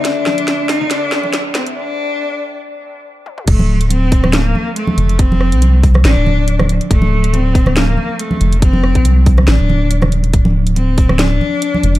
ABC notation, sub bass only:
X:1
M:4/4
L:1/16
Q:"Swing 16ths" 1/4=140
K:Dphr
V:1 name="Sub bass" clef=bass
z16 | z16 | D,,,8- D,,,2 z4 F,,,2- | F,,,3 C,,4- C,, A,,, D,,,6 z |
D,,,8- D,,,2 z4 F,,,2- | F,,,3 C,,4- C,, A,,, D,,,3 E,,,4 | D,,,8- D,,,2 z4 F,,,2 |]